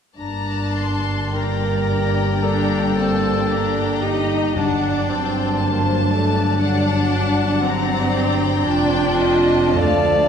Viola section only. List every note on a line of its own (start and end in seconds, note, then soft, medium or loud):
2.43 2.92 D4 soft
2.96 3.49 C4 soft
3.50 4.02 D4 soft
4.03 4.56 D#4 soft
4.56 5.07 D4 soft
5.09 5.60 C4 soft
5.60 6.10 A#3 soft
6.10 6.60 A3 soft
6.60 7.63 D4 medium
7.63 8.67 C4 medium
8.67 9.76 D4 medium
9.79 10.28 A3 medium